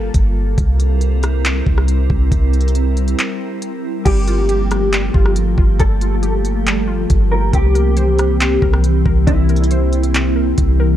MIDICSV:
0, 0, Header, 1, 6, 480
1, 0, Start_track
1, 0, Tempo, 434783
1, 638, Time_signature, 4, 2, 24, 8
1, 12110, End_track
2, 0, Start_track
2, 0, Title_t, "Clean electric guitar"
2, 0, Program_c, 0, 27
2, 4475, Note_on_c, 0, 67, 104
2, 5872, Note_off_c, 0, 67, 0
2, 6402, Note_on_c, 0, 69, 115
2, 8036, Note_off_c, 0, 69, 0
2, 8077, Note_on_c, 0, 70, 80
2, 8305, Note_off_c, 0, 70, 0
2, 8332, Note_on_c, 0, 67, 115
2, 9721, Note_off_c, 0, 67, 0
2, 10234, Note_on_c, 0, 64, 114
2, 12110, Note_off_c, 0, 64, 0
2, 12110, End_track
3, 0, Start_track
3, 0, Title_t, "Synth pluck"
3, 0, Program_c, 1, 84
3, 4475, Note_on_c, 1, 55, 94
3, 4721, Note_on_c, 1, 65, 81
3, 4958, Note_on_c, 1, 67, 80
3, 5422, Note_off_c, 1, 55, 0
3, 5435, Note_on_c, 1, 55, 73
3, 5660, Note_off_c, 1, 65, 0
3, 5673, Note_on_c, 1, 65, 81
3, 6144, Note_off_c, 1, 65, 0
3, 6157, Note_on_c, 1, 65, 81
3, 6384, Note_off_c, 1, 55, 0
3, 6397, Note_on_c, 1, 55, 80
3, 6398, Note_off_c, 1, 67, 0
3, 6625, Note_off_c, 1, 65, 0
3, 6639, Note_on_c, 1, 65, 74
3, 6874, Note_on_c, 1, 67, 81
3, 7344, Note_off_c, 1, 55, 0
3, 7357, Note_on_c, 1, 55, 79
3, 7577, Note_off_c, 1, 65, 0
3, 7590, Note_on_c, 1, 65, 89
3, 8061, Note_off_c, 1, 65, 0
3, 8074, Note_on_c, 1, 65, 81
3, 8315, Note_on_c, 1, 60, 89
3, 8316, Note_off_c, 1, 65, 0
3, 8316, Note_off_c, 1, 67, 0
3, 8318, Note_off_c, 1, 55, 0
3, 8555, Note_on_c, 1, 70, 85
3, 8798, Note_on_c, 1, 72, 84
3, 9263, Note_off_c, 1, 60, 0
3, 9276, Note_on_c, 1, 60, 81
3, 9502, Note_off_c, 1, 70, 0
3, 9515, Note_on_c, 1, 70, 85
3, 9985, Note_off_c, 1, 70, 0
3, 9998, Note_on_c, 1, 70, 81
3, 10223, Note_off_c, 1, 60, 0
3, 10236, Note_on_c, 1, 60, 90
3, 10238, Note_off_c, 1, 72, 0
3, 10467, Note_off_c, 1, 70, 0
3, 10480, Note_on_c, 1, 70, 83
3, 10723, Note_on_c, 1, 72, 82
3, 11186, Note_off_c, 1, 60, 0
3, 11199, Note_on_c, 1, 60, 73
3, 11423, Note_off_c, 1, 70, 0
3, 11436, Note_on_c, 1, 70, 78
3, 11907, Note_off_c, 1, 70, 0
3, 11921, Note_on_c, 1, 70, 89
3, 12110, Note_off_c, 1, 60, 0
3, 12110, Note_off_c, 1, 70, 0
3, 12110, Note_off_c, 1, 72, 0
3, 12110, End_track
4, 0, Start_track
4, 0, Title_t, "Ambient pad"
4, 0, Program_c, 2, 92
4, 0, Note_on_c, 2, 55, 84
4, 0, Note_on_c, 2, 58, 81
4, 0, Note_on_c, 2, 65, 78
4, 0, Note_on_c, 2, 69, 91
4, 595, Note_off_c, 2, 55, 0
4, 600, Note_off_c, 2, 58, 0
4, 600, Note_off_c, 2, 65, 0
4, 600, Note_off_c, 2, 69, 0
4, 637, Note_on_c, 2, 70, 91
4, 638, Note_on_c, 2, 60, 78
4, 638, Note_on_c, 2, 64, 80
4, 639, Note_on_c, 2, 55, 82
4, 4439, Note_off_c, 2, 70, 0
4, 4440, Note_off_c, 2, 55, 0
4, 4440, Note_off_c, 2, 60, 0
4, 4440, Note_off_c, 2, 64, 0
4, 4478, Note_on_c, 2, 53, 87
4, 4478, Note_on_c, 2, 57, 78
4, 4478, Note_on_c, 2, 58, 82
4, 4478, Note_on_c, 2, 67, 90
4, 8280, Note_off_c, 2, 53, 0
4, 8280, Note_off_c, 2, 57, 0
4, 8317, Note_on_c, 2, 52, 83
4, 8319, Note_on_c, 2, 60, 78
4, 12110, Note_off_c, 2, 52, 0
4, 12110, Note_off_c, 2, 58, 0
4, 12110, Note_off_c, 2, 60, 0
4, 12110, Note_off_c, 2, 67, 0
4, 12110, End_track
5, 0, Start_track
5, 0, Title_t, "808-style bass"
5, 0, Program_c, 3, 38
5, 0, Note_on_c, 3, 31, 110
5, 114, Note_off_c, 3, 31, 0
5, 160, Note_on_c, 3, 31, 111
5, 620, Note_off_c, 3, 31, 0
5, 638, Note_on_c, 3, 36, 109
5, 1794, Note_off_c, 3, 36, 0
5, 1838, Note_on_c, 3, 36, 108
5, 2299, Note_off_c, 3, 36, 0
5, 2317, Note_on_c, 3, 36, 102
5, 2548, Note_off_c, 3, 36, 0
5, 2557, Note_on_c, 3, 36, 108
5, 3479, Note_off_c, 3, 36, 0
5, 4478, Note_on_c, 3, 31, 116
5, 5634, Note_off_c, 3, 31, 0
5, 5678, Note_on_c, 3, 31, 104
5, 6139, Note_off_c, 3, 31, 0
5, 6158, Note_on_c, 3, 31, 106
5, 6388, Note_off_c, 3, 31, 0
5, 6398, Note_on_c, 3, 31, 110
5, 7794, Note_off_c, 3, 31, 0
5, 7839, Note_on_c, 3, 31, 113
5, 8299, Note_off_c, 3, 31, 0
5, 8318, Note_on_c, 3, 36, 109
5, 9474, Note_off_c, 3, 36, 0
5, 9518, Note_on_c, 3, 36, 104
5, 9979, Note_off_c, 3, 36, 0
5, 9997, Note_on_c, 3, 36, 104
5, 10228, Note_off_c, 3, 36, 0
5, 10239, Note_on_c, 3, 36, 114
5, 11634, Note_off_c, 3, 36, 0
5, 11680, Note_on_c, 3, 36, 112
5, 12110, Note_off_c, 3, 36, 0
5, 12110, End_track
6, 0, Start_track
6, 0, Title_t, "Drums"
6, 157, Note_on_c, 9, 42, 78
6, 159, Note_on_c, 9, 36, 92
6, 267, Note_off_c, 9, 42, 0
6, 270, Note_off_c, 9, 36, 0
6, 638, Note_on_c, 9, 36, 107
6, 638, Note_on_c, 9, 42, 62
6, 748, Note_off_c, 9, 36, 0
6, 749, Note_off_c, 9, 42, 0
6, 880, Note_on_c, 9, 42, 67
6, 990, Note_off_c, 9, 42, 0
6, 1116, Note_on_c, 9, 42, 67
6, 1226, Note_off_c, 9, 42, 0
6, 1357, Note_on_c, 9, 42, 68
6, 1364, Note_on_c, 9, 37, 94
6, 1468, Note_off_c, 9, 42, 0
6, 1475, Note_off_c, 9, 37, 0
6, 1598, Note_on_c, 9, 42, 77
6, 1605, Note_on_c, 9, 39, 116
6, 1708, Note_off_c, 9, 42, 0
6, 1715, Note_off_c, 9, 39, 0
6, 1838, Note_on_c, 9, 36, 102
6, 1948, Note_off_c, 9, 36, 0
6, 1962, Note_on_c, 9, 37, 92
6, 2072, Note_off_c, 9, 37, 0
6, 2077, Note_on_c, 9, 42, 76
6, 2187, Note_off_c, 9, 42, 0
6, 2317, Note_on_c, 9, 36, 105
6, 2427, Note_off_c, 9, 36, 0
6, 2558, Note_on_c, 9, 36, 107
6, 2558, Note_on_c, 9, 42, 66
6, 2668, Note_off_c, 9, 36, 0
6, 2669, Note_off_c, 9, 42, 0
6, 2798, Note_on_c, 9, 42, 42
6, 2877, Note_off_c, 9, 42, 0
6, 2877, Note_on_c, 9, 42, 55
6, 2958, Note_off_c, 9, 42, 0
6, 2958, Note_on_c, 9, 42, 63
6, 3037, Note_off_c, 9, 42, 0
6, 3037, Note_on_c, 9, 42, 68
6, 3147, Note_off_c, 9, 42, 0
6, 3278, Note_on_c, 9, 42, 60
6, 3388, Note_off_c, 9, 42, 0
6, 3398, Note_on_c, 9, 42, 58
6, 3508, Note_off_c, 9, 42, 0
6, 3517, Note_on_c, 9, 42, 78
6, 3525, Note_on_c, 9, 39, 116
6, 3628, Note_off_c, 9, 42, 0
6, 3635, Note_off_c, 9, 39, 0
6, 3997, Note_on_c, 9, 42, 79
6, 4107, Note_off_c, 9, 42, 0
6, 4478, Note_on_c, 9, 36, 114
6, 4478, Note_on_c, 9, 49, 99
6, 4479, Note_on_c, 9, 42, 67
6, 4588, Note_off_c, 9, 36, 0
6, 4589, Note_off_c, 9, 42, 0
6, 4589, Note_off_c, 9, 49, 0
6, 4720, Note_on_c, 9, 42, 68
6, 4830, Note_off_c, 9, 42, 0
6, 4957, Note_on_c, 9, 42, 72
6, 5067, Note_off_c, 9, 42, 0
6, 5198, Note_on_c, 9, 42, 69
6, 5205, Note_on_c, 9, 37, 96
6, 5308, Note_off_c, 9, 42, 0
6, 5315, Note_off_c, 9, 37, 0
6, 5438, Note_on_c, 9, 42, 81
6, 5446, Note_on_c, 9, 39, 123
6, 5549, Note_off_c, 9, 42, 0
6, 5556, Note_off_c, 9, 39, 0
6, 5678, Note_on_c, 9, 36, 107
6, 5789, Note_off_c, 9, 36, 0
6, 5803, Note_on_c, 9, 37, 95
6, 5913, Note_off_c, 9, 37, 0
6, 5917, Note_on_c, 9, 42, 82
6, 6027, Note_off_c, 9, 42, 0
6, 6157, Note_on_c, 9, 36, 107
6, 6268, Note_off_c, 9, 36, 0
6, 6398, Note_on_c, 9, 36, 114
6, 6398, Note_on_c, 9, 42, 63
6, 6508, Note_off_c, 9, 36, 0
6, 6509, Note_off_c, 9, 42, 0
6, 6639, Note_on_c, 9, 42, 66
6, 6750, Note_off_c, 9, 42, 0
6, 6876, Note_on_c, 9, 42, 72
6, 6987, Note_off_c, 9, 42, 0
6, 7118, Note_on_c, 9, 42, 72
6, 7228, Note_off_c, 9, 42, 0
6, 7359, Note_on_c, 9, 42, 77
6, 7366, Note_on_c, 9, 39, 119
6, 7469, Note_off_c, 9, 42, 0
6, 7476, Note_off_c, 9, 39, 0
6, 7837, Note_on_c, 9, 42, 80
6, 7839, Note_on_c, 9, 36, 95
6, 7947, Note_off_c, 9, 42, 0
6, 7950, Note_off_c, 9, 36, 0
6, 8318, Note_on_c, 9, 36, 117
6, 8318, Note_on_c, 9, 42, 67
6, 8428, Note_off_c, 9, 36, 0
6, 8428, Note_off_c, 9, 42, 0
6, 8560, Note_on_c, 9, 42, 70
6, 8670, Note_off_c, 9, 42, 0
6, 8795, Note_on_c, 9, 42, 70
6, 8906, Note_off_c, 9, 42, 0
6, 9037, Note_on_c, 9, 42, 70
6, 9044, Note_on_c, 9, 37, 96
6, 9147, Note_off_c, 9, 42, 0
6, 9154, Note_off_c, 9, 37, 0
6, 9278, Note_on_c, 9, 42, 80
6, 9285, Note_on_c, 9, 39, 124
6, 9388, Note_off_c, 9, 42, 0
6, 9396, Note_off_c, 9, 39, 0
6, 9518, Note_on_c, 9, 36, 101
6, 9629, Note_off_c, 9, 36, 0
6, 9643, Note_on_c, 9, 37, 96
6, 9753, Note_off_c, 9, 37, 0
6, 9757, Note_on_c, 9, 42, 83
6, 9868, Note_off_c, 9, 42, 0
6, 9998, Note_on_c, 9, 36, 104
6, 10108, Note_off_c, 9, 36, 0
6, 10238, Note_on_c, 9, 36, 116
6, 10238, Note_on_c, 9, 42, 66
6, 10349, Note_off_c, 9, 36, 0
6, 10349, Note_off_c, 9, 42, 0
6, 10478, Note_on_c, 9, 42, 40
6, 10558, Note_off_c, 9, 42, 0
6, 10558, Note_on_c, 9, 42, 54
6, 10638, Note_off_c, 9, 42, 0
6, 10638, Note_on_c, 9, 42, 67
6, 10717, Note_off_c, 9, 42, 0
6, 10717, Note_on_c, 9, 42, 75
6, 10827, Note_off_c, 9, 42, 0
6, 10959, Note_on_c, 9, 42, 61
6, 11069, Note_off_c, 9, 42, 0
6, 11078, Note_on_c, 9, 42, 61
6, 11189, Note_off_c, 9, 42, 0
6, 11199, Note_on_c, 9, 42, 79
6, 11206, Note_on_c, 9, 39, 121
6, 11309, Note_off_c, 9, 42, 0
6, 11317, Note_off_c, 9, 39, 0
6, 11677, Note_on_c, 9, 42, 84
6, 11680, Note_on_c, 9, 36, 99
6, 11788, Note_off_c, 9, 42, 0
6, 11791, Note_off_c, 9, 36, 0
6, 12110, End_track
0, 0, End_of_file